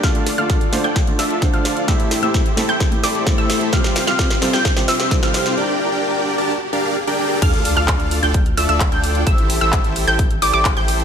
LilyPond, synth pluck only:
\new Staff \with { instrumentName = "Synth pluck" } { \time 4/4 \key d \minor \tempo 4 = 130 f'''8. f'''4 g'''16 r8 e'''8 r16 f'''8. | e'''8. e'''4 g'''16 r8 d'''8 r16 e'''8. | f'''8. f'''4 g'''16 r8 e'''8 r16 f'''8. | r1 |
f'''8. f'''4 g'''16 r8 e'''16 e'''8 g'''8. | e'''8. e'''4 g'''16 r8 d'''16 d'''8 g'''8. | }